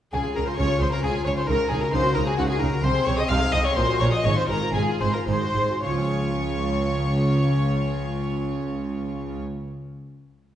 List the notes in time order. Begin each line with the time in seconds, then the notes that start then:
0.12 C#2 C#3 G#4 G#5
0.24 F4
0.35 C#2 C#3 G#4 A#4 A#5
0.44 F4 C5 C6
0.57 C#2 C#3 C#4 F4 G#4 C#5 C#6
0.68 F4
0.79 C#2 C#3 G#4 C5 C6
0.90 F4 A#4 A#5
1.01 C#2 C#3 C#4 F4 G#4 G#5
1.11 F4
1.22 C#2 C#3 G#4 C#5
1.27 C#3 C#5 C#6
1.34 F4 C5 C6
1.45 C#2 C#3 D#4 A#4 A#5
1.49 C#3
1.56 F#4
1.69 C#2 C#3 D#4 G#4 G#5
1.81 F#4 A#4 A#5
1.92 C#2 C#3 A#3 D#4 F#4 C5 C6
2.03 F#4
2.14 C#2 C#3 D#4 A#4 A#5
2.25 F#4 G#4 G#5
2.37 C#2 C#3 A#3 D#4 F#4 F#5
2.48 F#4 G#4 G#5
2.59 C#2 C#3 D#4 A#4 A#5
2.73 F#4
2.82 C2 C3 C5 C6
2.95 G#4
3.04 C2 C3 C5 C#5 C#6
3.17 G#4 D#5 D#6
3.27 C2 C3 G#3 D#4 G#4 C5 F5 F6
3.41 G#4
3.51 C2 C3 C5 D#5 D#6
3.63 G#4 C#5 C#6
3.73 A#1 A#2 A#3 A#4 C5 C6
3.78 C#4 F#4 C5
3.87 F#4
3.97 A#1 A#2 A#4 C#5 C#6
4.02 C#5
4.11 F#4 D#5 D#6
4.24 G#1 G#2 G#4 C#5 C#6
4.36 F4 C5 C6
4.48 G#1 G#2 G#4 A#4 A#5
4.62 F4
4.74 G#1 G#2 C#4 G#4 G#5
4.88 F4
5.00 G#1 G#2 G#4 C5 C6
5.14 F4 A#4 A#5
5.26 G#1 G#2 D#4 G#4 C5 C6
5.42 F#4
5.54 G#1 G#2 G#4
5.70 F#4
5.82 C#2 C#3 F4 C#5 C#6
5.90 F3
5.98 C#4
6.04 G#4
6.11 C#5